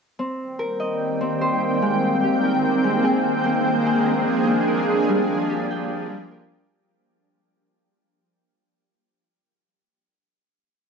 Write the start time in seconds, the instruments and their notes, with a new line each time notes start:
0.19 ambient pad D#3 A#3 G5, harp C4
0.59 harp A#4
0.80 harp D#5
1.21 harp C4
1.41 harp C5
1.82 harp G#3, ambient pad G#3
2.23 harp G4
2.43 harp A#4
2.84 harp G#3
3.04 harp G#4
3.45 harp A#3, ambient pad D4
3.86 harp G#4
4.06 harp A#5
4.47 harp A#3
4.68 harp A#4
5.09 harp G3
5.49 harp G4
5.71 harp G5
6.10 harp G3
6.31 harp A#4